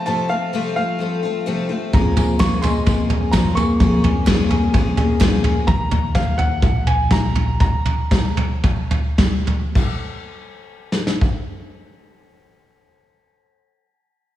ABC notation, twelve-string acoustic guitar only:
X:1
M:4/4
L:1/8
Q:1/4=126
K:Ebdor
V:1 name="Twelve-string acoustic guitar"
[F,,C,F,=A,CF] [F,A,CF] [F,,C,F,A,CF] [F,A,CF] [F,A,CF] [F,A,CF] [F,,C,F,A,CF] [F,A,CF] | [F,B,DA] [B,DA] [F,B,DA] [B,DA] [F,B,DA] [B,DA] [F,B,DA] [B,DA] | [F,B,DA] [B,DA] [F,B,DA] [B,DA] [F,B,DA] [B,DA] [F,B,DA] [B,DA] | z8 |
z8 | z8 | z8 |]